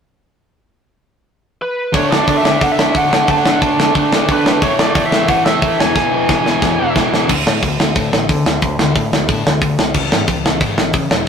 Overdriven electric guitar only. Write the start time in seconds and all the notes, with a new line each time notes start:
1.92 D3 A3 D4
2.10 D3 A3 D4
2.26 D3 A3 D4
2.43 D3 A3 D4
2.60 D3 A3 D4
2.77 D3 A3 D4
2.94 D3 A3 D4
3.09 D3 A3 D4
3.25 D3 A3 D4
3.45 D3 A3 D4
3.62 D3 A3 D4
3.78 D3 A3 D4
3.95 D3 A3 D4
4.12 D3 A3 D4
4.29 D3 A3 D4
4.45 D3 A3 D4
4.62 A2 E3 A3
4.78 A2 E3 A3
4.95 A2 E3 A3
5.11 A2 E3 A3
5.29 A2 E3 A3
5.45 A2 E3 A3
5.62 A2 E3 A3
5.79 E2 B2 E3
5.96 E2 B2 E3
6.13 E2 B2 E3
6.29 E2 B2 E3
6.47 E2 B2 E3
6.63 E2 B2 E3
6.80 E2 B2 E3
6.96 E2 B2 E3
7.13 E2 B2 E3